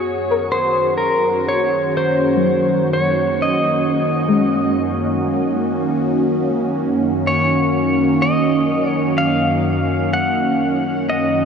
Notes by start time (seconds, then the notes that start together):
Already playing: F#2 D#3 F#4 G#4 C#5 D#6
0.04 C#4
0.31 A#4
0.52 C5
0.77 A#3
0.98 A#4
1.48 C#5
1.97 C5
2.36 F#3
2.93 C#5
3.42 D#5
4.28 G#3
7.27 C#5
8.22 D#5
8.91 C#5
9.18 F5
10.13 F#5
11.10 D#5